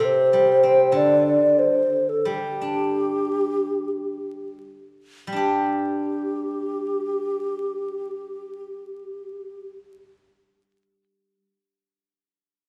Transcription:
0.00 C3
0.05 C5
0.33 G3
0.63 C4
0.92 D3 D5
1.26 D5
1.59 C5
2.09 A4
2.25 G3 G4
2.61 D4
5.27 G3
5.33 D4 G4
5.39 G4

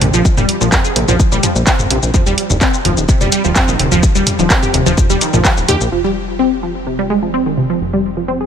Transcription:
0.01 A#1 C3, closed hi-hat, mid tom
0.14 A#1 F3, shaker
0.25 kick, shaker
0.37 A#1 G3, mid tom, shaker
0.49 closed hi-hat
0.61 A#1 F3, shaker
0.72 C4, kick, clap, mid tom, shaker
0.85 G#4, shaker
0.96 A#1 C3, closed hi-hat
1.08 A#1 F3, mid tom, shaker
1.20 kick, shaker
1.32 A#1 G3, shaker
1.43 F3, closed hi-hat, mid tom, shaker
1.56 A#1, shaker
1.67 C4, kick, clap, shaker
1.79 G#1, mid tom, shaker
1.91 A#1 C3, closed hi-hat
2.03 A#1, shaker
2.14 F3, kick, mid tom, shaker
2.26 D#1 G3, shaker
2.38 closed hi-hat
2.50 D#1, mid tom, shaker
2.61 C4, kick, clap, shaker
2.74 shaker
2.85 D#1 F3, closed hi-hat, mid tom
2.97 D#1, shaker
3.09 C3, kick, shaker
3.21 D#1 G3, mid tom, shaker
3.32 G3, closed hi-hat, shaker
3.44 D#1 F3, shaker
3.56 C4, kick, clap, mid tom, shaker
3.68 A#1 D#3, shaker
3.79 D#1 C3, closed hi-hat
3.92 D#1 F3, mid tom, shaker
4.03 kick, shaker
4.15 D#1 G3, shaker
4.27 closed hi-hat, mid tom, shaker
4.39 D#1 F3, shaker
4.50 C4, kick, clap, shaker
4.63 G4, mid tom, shaker
4.74 D#1 C3, closed hi-hat, shaker
4.86 D#1 F3, shaker
4.98 kick, mid tom, shaker
5.10 D#1 G3, shaker
5.21 D#3, closed hi-hat, shaker
5.33 A#1 F3, mid tom, shaker
5.45 F3, kick, clap, shaker
5.57 D#1, shaker
5.68 D#2 G4, closed hi-hat, mid tom, shaker
5.81 A#1, shaker
5.92 F1 F3, crash
6.04 G3
6.39 C4
6.63 F3
6.87 C3
6.99 G3
7.10 G#3
7.22 F3
7.34 C4
7.46 D#3
7.57 C3
7.70 F3
7.81 F1
7.93 G3
8.17 F3
8.28 C4
8.41 G#4

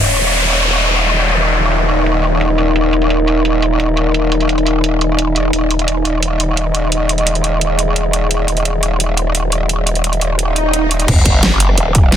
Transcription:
0.00 D#1 D#4 A#4 D#5, downlifter
0.16 closed hi-hat
0.24 closed hi-hat
0.33 closed hi-hat
0.50 closed hi-hat
0.68 closed hi-hat
0.85 closed hi-hat
1.02 closed hi-hat
1.20 closed hi-hat
1.37 closed hi-hat
1.54 closed hi-hat
1.63 closed hi-hat
1.72 closed hi-hat
1.80 closed hi-hat
1.89 closed hi-hat
2.06 closed hi-hat
2.24 closed hi-hat
2.41 closed hi-hat
2.58 closed hi-hat
2.76 G#5, closed hi-hat
2.93 closed hi-hat
3.02 closed hi-hat
3.10 closed hi-hat
3.28 closed hi-hat
3.45 closed hi-hat
3.62 closed hi-hat
3.80 closed hi-hat
3.97 closed hi-hat
4.14 closed hi-hat
4.32 closed hi-hat
4.41 closed hi-hat
4.49 closed hi-hat
4.58 closed hi-hat
4.67 closed hi-hat
4.84 closed hi-hat
5.01 closed hi-hat
5.19 closed hi-hat
5.36 closed hi-hat
5.53 D#1 G#4 D#5, closed hi-hat
5.71 closed hi-hat
5.79 closed hi-hat
5.88 closed hi-hat
6.05 closed hi-hat
6.23 closed hi-hat
6.40 closed hi-hat
6.57 closed hi-hat
6.75 closed hi-hat
6.92 closed hi-hat
7.09 closed hi-hat
7.18 closed hi-hat
7.27 closed hi-hat
7.35 closed hi-hat
7.44 closed hi-hat
7.61 closed hi-hat
7.79 closed hi-hat
7.96 closed hi-hat
8.13 closed hi-hat
8.31 F#5, closed hi-hat
8.48 closed hi-hat
8.57 closed hi-hat
8.65 closed hi-hat
8.83 closed hi-hat
9.00 closed hi-hat
9.17 closed hi-hat
9.35 closed hi-hat
9.52 closed hi-hat
9.69 closed hi-hat
9.87 closed hi-hat
9.95 closed hi-hat
10.04 closed hi-hat
10.13 closed hi-hat
10.21 closed hi-hat
10.39 closed hi-hat, swell
10.56 closed hi-hat
10.73 closed hi-hat
10.91 closed hi-hat
11.00 closed hi-hat
11.08 D#1, kick, closed hi-hat, crash, sub drop
11.26 F#1, kick, closed hi-hat
11.43 snare, closed hi-hat
11.60 closed hi-hat
11.69 cross-stick
11.78 D#1, closed hi-hat
11.95 kick, closed hi-hat
12.12 snare, closed hi-hat

